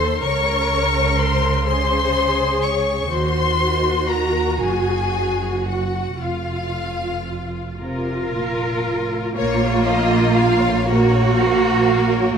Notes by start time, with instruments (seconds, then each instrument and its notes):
Already playing: double bass section D#2, cello section D#3, viola section A4, violin section C5 C6
0.21 double bass section C#2, cello section C#3, viola section A#4, violin section C#5 C#6
1.18 violin section C5 C6
1.66 viola section G#4, violin section C5 C6
2.63 violin section C#5 C#6
3.10 double bass section D#2, cello section D#3, viola section F#4, violin section C5 C6
4.10 violin section A#4 A#5
4.61 double bass section F#1, cello section F#2, violin section G#4 G#5
5.65 violin section F#4 F#5
6.20 double bass section F1, cello section F2, viola section F4, violin section F4 F5
7.80 cello section C3 A#4, viola section F4
8.33 cello section A#2
8.85 cello section A2
9.36 double bass section A#1, viola section A#3, cello section F4, violin section A#4 C#5
9.61 violin section C#5
9.86 violin section D#5 F5
10.12 violin section A#5
10.36 violin section F5
10.61 violin section C#5
10.87 viola section A#3, cello section F#4, violin section A#4 C#5
11.13 violin section C#5
11.37 violin section C5 F5
11.63 violin section A#5
11.87 violin section A#4 F5
12.12 violin section C#5